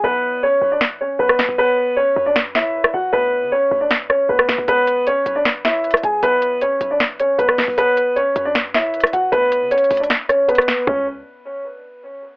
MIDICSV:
0, 0, Header, 1, 4, 480
1, 0, Start_track
1, 0, Tempo, 387097
1, 43, Time_signature, 4, 2, 24, 8
1, 15335, End_track
2, 0, Start_track
2, 0, Title_t, "Grand piano"
2, 0, Program_c, 0, 0
2, 46, Note_on_c, 0, 71, 97
2, 55, Note_on_c, 0, 59, 80
2, 496, Note_off_c, 0, 71, 0
2, 501, Note_off_c, 0, 59, 0
2, 531, Note_on_c, 0, 73, 89
2, 540, Note_on_c, 0, 61, 67
2, 866, Note_off_c, 0, 73, 0
2, 871, Note_off_c, 0, 61, 0
2, 887, Note_on_c, 0, 74, 78
2, 898, Note_on_c, 0, 62, 57
2, 992, Note_off_c, 0, 74, 0
2, 998, Note_off_c, 0, 62, 0
2, 1248, Note_on_c, 0, 73, 76
2, 1257, Note_on_c, 0, 61, 57
2, 1459, Note_off_c, 0, 73, 0
2, 1464, Note_off_c, 0, 61, 0
2, 1476, Note_on_c, 0, 71, 87
2, 1486, Note_on_c, 0, 59, 58
2, 1931, Note_off_c, 0, 71, 0
2, 1936, Note_off_c, 0, 59, 0
2, 1964, Note_on_c, 0, 71, 110
2, 1974, Note_on_c, 0, 59, 83
2, 2415, Note_off_c, 0, 71, 0
2, 2421, Note_off_c, 0, 59, 0
2, 2437, Note_on_c, 0, 73, 92
2, 2447, Note_on_c, 0, 61, 72
2, 2779, Note_off_c, 0, 73, 0
2, 2784, Note_off_c, 0, 61, 0
2, 2803, Note_on_c, 0, 74, 84
2, 2813, Note_on_c, 0, 62, 69
2, 2910, Note_off_c, 0, 74, 0
2, 2915, Note_off_c, 0, 62, 0
2, 3166, Note_on_c, 0, 76, 74
2, 3176, Note_on_c, 0, 64, 58
2, 3616, Note_off_c, 0, 76, 0
2, 3621, Note_off_c, 0, 64, 0
2, 3643, Note_on_c, 0, 78, 76
2, 3652, Note_on_c, 0, 66, 62
2, 3856, Note_off_c, 0, 78, 0
2, 3861, Note_off_c, 0, 66, 0
2, 3877, Note_on_c, 0, 71, 102
2, 3888, Note_on_c, 0, 59, 72
2, 4332, Note_off_c, 0, 71, 0
2, 4337, Note_off_c, 0, 59, 0
2, 4362, Note_on_c, 0, 73, 88
2, 4372, Note_on_c, 0, 61, 71
2, 4701, Note_off_c, 0, 73, 0
2, 4706, Note_off_c, 0, 61, 0
2, 4719, Note_on_c, 0, 74, 73
2, 4729, Note_on_c, 0, 62, 62
2, 4828, Note_off_c, 0, 74, 0
2, 4833, Note_off_c, 0, 62, 0
2, 5077, Note_on_c, 0, 73, 76
2, 5086, Note_on_c, 0, 61, 60
2, 5293, Note_off_c, 0, 73, 0
2, 5298, Note_off_c, 0, 61, 0
2, 5319, Note_on_c, 0, 71, 76
2, 5329, Note_on_c, 0, 59, 62
2, 5772, Note_off_c, 0, 71, 0
2, 5778, Note_off_c, 0, 59, 0
2, 5805, Note_on_c, 0, 71, 103
2, 5815, Note_on_c, 0, 59, 85
2, 6256, Note_off_c, 0, 71, 0
2, 6261, Note_off_c, 0, 59, 0
2, 6289, Note_on_c, 0, 73, 97
2, 6299, Note_on_c, 0, 61, 77
2, 6625, Note_off_c, 0, 73, 0
2, 6630, Note_off_c, 0, 61, 0
2, 6643, Note_on_c, 0, 74, 87
2, 6653, Note_on_c, 0, 62, 69
2, 6750, Note_off_c, 0, 74, 0
2, 6755, Note_off_c, 0, 62, 0
2, 7005, Note_on_c, 0, 76, 71
2, 7015, Note_on_c, 0, 64, 56
2, 7456, Note_off_c, 0, 76, 0
2, 7461, Note_off_c, 0, 64, 0
2, 7490, Note_on_c, 0, 80, 77
2, 7500, Note_on_c, 0, 68, 61
2, 7700, Note_off_c, 0, 80, 0
2, 7705, Note_off_c, 0, 68, 0
2, 7726, Note_on_c, 0, 71, 99
2, 7736, Note_on_c, 0, 59, 80
2, 8176, Note_off_c, 0, 71, 0
2, 8182, Note_off_c, 0, 59, 0
2, 8210, Note_on_c, 0, 73, 87
2, 8220, Note_on_c, 0, 61, 64
2, 8545, Note_off_c, 0, 73, 0
2, 8551, Note_off_c, 0, 61, 0
2, 8568, Note_on_c, 0, 74, 75
2, 8577, Note_on_c, 0, 62, 57
2, 8672, Note_off_c, 0, 74, 0
2, 8678, Note_off_c, 0, 62, 0
2, 8927, Note_on_c, 0, 73, 77
2, 8937, Note_on_c, 0, 61, 63
2, 9138, Note_off_c, 0, 73, 0
2, 9144, Note_off_c, 0, 61, 0
2, 9157, Note_on_c, 0, 71, 85
2, 9167, Note_on_c, 0, 59, 60
2, 9611, Note_off_c, 0, 71, 0
2, 9617, Note_off_c, 0, 59, 0
2, 9644, Note_on_c, 0, 71, 110
2, 9654, Note_on_c, 0, 59, 85
2, 10095, Note_off_c, 0, 71, 0
2, 10100, Note_off_c, 0, 59, 0
2, 10117, Note_on_c, 0, 73, 93
2, 10127, Note_on_c, 0, 61, 72
2, 10459, Note_off_c, 0, 73, 0
2, 10464, Note_off_c, 0, 61, 0
2, 10482, Note_on_c, 0, 74, 89
2, 10492, Note_on_c, 0, 62, 68
2, 10589, Note_off_c, 0, 74, 0
2, 10595, Note_off_c, 0, 62, 0
2, 10845, Note_on_c, 0, 76, 75
2, 10854, Note_on_c, 0, 64, 57
2, 11296, Note_off_c, 0, 76, 0
2, 11301, Note_off_c, 0, 64, 0
2, 11322, Note_on_c, 0, 78, 74
2, 11332, Note_on_c, 0, 66, 59
2, 11536, Note_off_c, 0, 78, 0
2, 11541, Note_off_c, 0, 66, 0
2, 11556, Note_on_c, 0, 71, 101
2, 11566, Note_on_c, 0, 59, 72
2, 12011, Note_off_c, 0, 71, 0
2, 12016, Note_off_c, 0, 59, 0
2, 12042, Note_on_c, 0, 73, 90
2, 12051, Note_on_c, 0, 61, 72
2, 12381, Note_off_c, 0, 73, 0
2, 12386, Note_off_c, 0, 61, 0
2, 12398, Note_on_c, 0, 74, 74
2, 12408, Note_on_c, 0, 62, 66
2, 12507, Note_off_c, 0, 74, 0
2, 12512, Note_off_c, 0, 62, 0
2, 12757, Note_on_c, 0, 73, 75
2, 12767, Note_on_c, 0, 61, 61
2, 12973, Note_off_c, 0, 73, 0
2, 12978, Note_off_c, 0, 61, 0
2, 12999, Note_on_c, 0, 71, 79
2, 13009, Note_on_c, 0, 59, 63
2, 13452, Note_off_c, 0, 71, 0
2, 13458, Note_off_c, 0, 59, 0
2, 13482, Note_on_c, 0, 61, 83
2, 13706, Note_off_c, 0, 61, 0
2, 15335, End_track
3, 0, Start_track
3, 0, Title_t, "808-style bass"
3, 0, Program_c, 1, 38
3, 44, Note_on_c, 1, 35, 115
3, 735, Note_off_c, 1, 35, 0
3, 763, Note_on_c, 1, 35, 106
3, 1455, Note_off_c, 1, 35, 0
3, 1483, Note_on_c, 1, 35, 107
3, 1714, Note_off_c, 1, 35, 0
3, 1722, Note_on_c, 1, 35, 102
3, 1835, Note_off_c, 1, 35, 0
3, 1843, Note_on_c, 1, 35, 99
3, 1956, Note_off_c, 1, 35, 0
3, 1963, Note_on_c, 1, 30, 112
3, 2424, Note_off_c, 1, 30, 0
3, 2683, Note_on_c, 1, 42, 106
3, 3605, Note_off_c, 1, 42, 0
3, 3644, Note_on_c, 1, 30, 105
3, 3874, Note_off_c, 1, 30, 0
3, 3884, Note_on_c, 1, 38, 113
3, 4243, Note_on_c, 1, 50, 100
3, 4262, Note_off_c, 1, 38, 0
3, 4357, Note_off_c, 1, 50, 0
3, 4603, Note_on_c, 1, 38, 106
3, 5064, Note_off_c, 1, 38, 0
3, 5323, Note_on_c, 1, 38, 108
3, 5554, Note_off_c, 1, 38, 0
3, 5563, Note_on_c, 1, 38, 103
3, 5676, Note_off_c, 1, 38, 0
3, 5683, Note_on_c, 1, 38, 99
3, 5799, Note_off_c, 1, 38, 0
3, 5804, Note_on_c, 1, 37, 115
3, 6265, Note_off_c, 1, 37, 0
3, 6524, Note_on_c, 1, 35, 106
3, 7445, Note_off_c, 1, 35, 0
3, 7484, Note_on_c, 1, 37, 107
3, 7714, Note_off_c, 1, 37, 0
3, 7724, Note_on_c, 1, 35, 119
3, 8415, Note_off_c, 1, 35, 0
3, 8444, Note_on_c, 1, 35, 108
3, 9135, Note_off_c, 1, 35, 0
3, 9164, Note_on_c, 1, 35, 105
3, 9394, Note_off_c, 1, 35, 0
3, 9403, Note_on_c, 1, 35, 103
3, 9516, Note_off_c, 1, 35, 0
3, 9523, Note_on_c, 1, 35, 101
3, 9636, Note_off_c, 1, 35, 0
3, 9643, Note_on_c, 1, 30, 116
3, 10104, Note_off_c, 1, 30, 0
3, 10363, Note_on_c, 1, 42, 108
3, 11285, Note_off_c, 1, 42, 0
3, 11323, Note_on_c, 1, 30, 104
3, 11554, Note_off_c, 1, 30, 0
3, 11563, Note_on_c, 1, 38, 108
3, 11923, Note_on_c, 1, 50, 99
3, 11942, Note_off_c, 1, 38, 0
3, 12037, Note_off_c, 1, 50, 0
3, 12283, Note_on_c, 1, 38, 105
3, 12514, Note_off_c, 1, 38, 0
3, 13483, Note_on_c, 1, 37, 112
3, 13930, Note_off_c, 1, 37, 0
3, 15335, End_track
4, 0, Start_track
4, 0, Title_t, "Drums"
4, 1004, Note_on_c, 9, 38, 106
4, 1128, Note_off_c, 9, 38, 0
4, 1604, Note_on_c, 9, 37, 96
4, 1724, Note_on_c, 9, 38, 100
4, 1728, Note_off_c, 9, 37, 0
4, 1848, Note_off_c, 9, 38, 0
4, 2924, Note_on_c, 9, 38, 107
4, 3048, Note_off_c, 9, 38, 0
4, 3162, Note_on_c, 9, 38, 99
4, 3286, Note_off_c, 9, 38, 0
4, 3523, Note_on_c, 9, 37, 102
4, 3647, Note_off_c, 9, 37, 0
4, 4844, Note_on_c, 9, 38, 106
4, 4968, Note_off_c, 9, 38, 0
4, 5083, Note_on_c, 9, 37, 70
4, 5207, Note_off_c, 9, 37, 0
4, 5444, Note_on_c, 9, 37, 102
4, 5564, Note_on_c, 9, 38, 100
4, 5568, Note_off_c, 9, 37, 0
4, 5688, Note_off_c, 9, 38, 0
4, 5804, Note_on_c, 9, 42, 91
4, 5928, Note_off_c, 9, 42, 0
4, 6044, Note_on_c, 9, 42, 83
4, 6168, Note_off_c, 9, 42, 0
4, 6284, Note_on_c, 9, 42, 65
4, 6408, Note_off_c, 9, 42, 0
4, 6524, Note_on_c, 9, 42, 82
4, 6648, Note_off_c, 9, 42, 0
4, 6764, Note_on_c, 9, 38, 112
4, 6764, Note_on_c, 9, 42, 70
4, 6888, Note_off_c, 9, 38, 0
4, 6888, Note_off_c, 9, 42, 0
4, 7003, Note_on_c, 9, 38, 102
4, 7004, Note_on_c, 9, 42, 87
4, 7127, Note_off_c, 9, 38, 0
4, 7128, Note_off_c, 9, 42, 0
4, 7244, Note_on_c, 9, 42, 42
4, 7324, Note_off_c, 9, 42, 0
4, 7324, Note_on_c, 9, 42, 56
4, 7364, Note_on_c, 9, 37, 102
4, 7404, Note_off_c, 9, 42, 0
4, 7404, Note_on_c, 9, 42, 66
4, 7484, Note_off_c, 9, 42, 0
4, 7484, Note_on_c, 9, 42, 85
4, 7488, Note_off_c, 9, 37, 0
4, 7608, Note_off_c, 9, 42, 0
4, 7724, Note_on_c, 9, 42, 90
4, 7848, Note_off_c, 9, 42, 0
4, 7964, Note_on_c, 9, 42, 83
4, 8088, Note_off_c, 9, 42, 0
4, 8204, Note_on_c, 9, 42, 66
4, 8328, Note_off_c, 9, 42, 0
4, 8444, Note_on_c, 9, 42, 86
4, 8568, Note_off_c, 9, 42, 0
4, 8683, Note_on_c, 9, 42, 68
4, 8684, Note_on_c, 9, 38, 109
4, 8807, Note_off_c, 9, 42, 0
4, 8808, Note_off_c, 9, 38, 0
4, 8924, Note_on_c, 9, 42, 87
4, 9048, Note_off_c, 9, 42, 0
4, 9164, Note_on_c, 9, 42, 67
4, 9283, Note_on_c, 9, 37, 100
4, 9288, Note_off_c, 9, 42, 0
4, 9404, Note_on_c, 9, 38, 100
4, 9404, Note_on_c, 9, 46, 64
4, 9407, Note_off_c, 9, 37, 0
4, 9528, Note_off_c, 9, 38, 0
4, 9528, Note_off_c, 9, 46, 0
4, 9644, Note_on_c, 9, 42, 93
4, 9768, Note_off_c, 9, 42, 0
4, 9884, Note_on_c, 9, 42, 81
4, 10008, Note_off_c, 9, 42, 0
4, 10123, Note_on_c, 9, 42, 66
4, 10247, Note_off_c, 9, 42, 0
4, 10363, Note_on_c, 9, 42, 83
4, 10487, Note_off_c, 9, 42, 0
4, 10603, Note_on_c, 9, 38, 110
4, 10603, Note_on_c, 9, 42, 73
4, 10727, Note_off_c, 9, 38, 0
4, 10727, Note_off_c, 9, 42, 0
4, 10843, Note_on_c, 9, 38, 99
4, 10843, Note_on_c, 9, 42, 89
4, 10967, Note_off_c, 9, 38, 0
4, 10967, Note_off_c, 9, 42, 0
4, 11083, Note_on_c, 9, 42, 43
4, 11164, Note_off_c, 9, 42, 0
4, 11164, Note_on_c, 9, 42, 55
4, 11203, Note_on_c, 9, 37, 101
4, 11244, Note_off_c, 9, 42, 0
4, 11244, Note_on_c, 9, 42, 67
4, 11324, Note_off_c, 9, 42, 0
4, 11324, Note_on_c, 9, 42, 84
4, 11327, Note_off_c, 9, 37, 0
4, 11448, Note_off_c, 9, 42, 0
4, 11564, Note_on_c, 9, 42, 89
4, 11688, Note_off_c, 9, 42, 0
4, 11803, Note_on_c, 9, 42, 83
4, 11927, Note_off_c, 9, 42, 0
4, 12043, Note_on_c, 9, 42, 69
4, 12123, Note_off_c, 9, 42, 0
4, 12123, Note_on_c, 9, 42, 52
4, 12203, Note_off_c, 9, 42, 0
4, 12203, Note_on_c, 9, 42, 38
4, 12283, Note_off_c, 9, 42, 0
4, 12283, Note_on_c, 9, 42, 53
4, 12283, Note_on_c, 9, 46, 67
4, 12363, Note_off_c, 9, 42, 0
4, 12363, Note_on_c, 9, 42, 69
4, 12407, Note_off_c, 9, 46, 0
4, 12443, Note_off_c, 9, 42, 0
4, 12443, Note_on_c, 9, 42, 90
4, 12523, Note_off_c, 9, 42, 0
4, 12523, Note_on_c, 9, 38, 106
4, 12523, Note_on_c, 9, 42, 71
4, 12647, Note_off_c, 9, 38, 0
4, 12647, Note_off_c, 9, 42, 0
4, 12762, Note_on_c, 9, 37, 71
4, 12763, Note_on_c, 9, 42, 88
4, 12886, Note_off_c, 9, 37, 0
4, 12887, Note_off_c, 9, 42, 0
4, 13003, Note_on_c, 9, 42, 66
4, 13083, Note_off_c, 9, 42, 0
4, 13083, Note_on_c, 9, 42, 54
4, 13123, Note_on_c, 9, 37, 99
4, 13163, Note_off_c, 9, 42, 0
4, 13163, Note_on_c, 9, 42, 37
4, 13243, Note_on_c, 9, 38, 104
4, 13247, Note_off_c, 9, 37, 0
4, 13287, Note_off_c, 9, 42, 0
4, 13367, Note_off_c, 9, 38, 0
4, 13483, Note_on_c, 9, 36, 105
4, 13483, Note_on_c, 9, 43, 103
4, 13607, Note_off_c, 9, 36, 0
4, 13607, Note_off_c, 9, 43, 0
4, 15335, End_track
0, 0, End_of_file